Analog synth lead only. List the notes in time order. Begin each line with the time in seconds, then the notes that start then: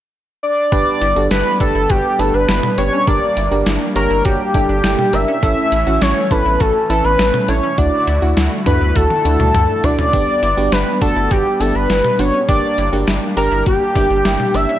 0.43 D5
1.31 B4
1.61 A4
1.90 G4
2.19 A4
2.34 B4
2.78 C#5
3.07 D5
3.96 A#4
4.25 G4
5.13 E5
6.01 C#5
6.31 B4
6.60 A4
6.90 A4
7.04 B4
7.49 C#5
7.78 D5
8.66 B4
8.96 A4
9.84 D5
10.72 B4
11.02 A4
11.31 G4
11.60 A4
11.75 B4
12.19 C#5
12.49 D5
13.37 A#4
13.66 G4
14.54 E5